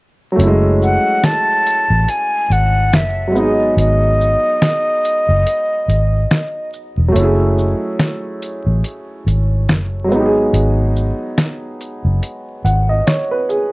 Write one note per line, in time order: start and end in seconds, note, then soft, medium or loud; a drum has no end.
0.32 3.26 F#3 medium
0.32 3.29 A3 medium
0.39 0.97 F#1 loud
0.39 3.31 C#4 medium
0.39 closed hi-hat medium
0.43 3.30 G#3 medium
0.43 3.33 E4 medium
0.82 1.26 F#5 medium
0.82 shaker soft
1.23 2.11 A5 loud
1.23 finger snap medium
1.23 snare loud
1.23 closed hi-hat medium
1.66 closed hi-hat soft
1.66 shaker soft
1.90 2.05 A1 medium
2.08 2.54 G#5 loud
2.08 closed hi-hat medium
2.50 2.92 G#1 medium
2.50 2.97 F#5 medium
2.50 closed hi-hat soft
2.50 shaker soft
2.92 3.35 F#1 medium
2.92 3.30 E5 medium
2.92 finger snap medium
2.92 snare loud
2.92 closed hi-hat medium
3.27 6.65 F#3 medium
3.27 6.67 G#3 medium
3.27 3.39 E5 medium
3.35 3.71 G#1 medium
3.35 6.69 B3 medium
3.35 6.70 D#4 medium
3.35 3.78 D#5 medium
3.35 shaker soft
3.42 6.72 G#4 medium
3.77 4.35 G#1 loud
3.77 6.70 D#5 medium
3.77 closed hi-hat medium
4.21 shaker soft
4.62 finger snap medium
4.62 snare loud
4.62 closed hi-hat medium
5.05 closed hi-hat soft
5.05 shaker soft
5.29 5.44 F#1 medium
5.46 closed hi-hat medium
5.88 6.25 G#1 medium
5.88 closed hi-hat soft
5.88 shaker soft
6.31 finger snap medium
6.31 snare loud
6.31 closed hi-hat medium
6.73 shaker soft
6.97 7.12 E1 medium
7.08 10.03 F#3 medium
7.08 10.05 A3 medium
7.15 7.73 F#1 loud
7.15 10.07 C#4 medium
7.15 closed hi-hat medium
7.19 10.09 E4 medium
7.19 10.11 G#4 medium
7.58 shaker soft
7.99 finger snap medium
7.99 snare loud
7.99 closed hi-hat medium
8.42 closed hi-hat soft
8.42 shaker soft
8.66 8.81 A1 medium
8.84 closed hi-hat medium
9.27 9.69 G#1 medium
9.27 closed hi-hat soft
9.27 shaker soft
9.69 10.11 F#1 medium
9.69 finger snap medium
9.69 snare loud
9.69 closed hi-hat medium
10.04 13.41 F#3 medium
10.04 13.43 G#3 medium
10.11 10.47 G#1 medium
10.11 13.45 B3 medium
10.11 shaker soft
10.15 13.47 D#4 medium
10.15 10.22 G4 medium
10.26 12.67 G#4 medium
10.53 11.11 G#1 medium
10.53 closed hi-hat medium
10.96 shaker soft
11.38 finger snap medium
11.38 snare loud
11.38 closed hi-hat medium
11.81 closed hi-hat soft
11.81 shaker soft
12.05 12.20 F#1 medium
12.23 closed hi-hat medium
12.64 13.01 G#1 medium
12.64 12.88 F#5 medium
12.64 closed hi-hat soft
12.64 shaker soft
12.89 13.06 D#5 medium
13.07 13.30 C#5 medium
13.07 finger snap medium
13.07 snare loud
13.07 closed hi-hat medium
13.31 13.48 B4 medium
13.49 13.72 G#4 medium
13.49 shaker soft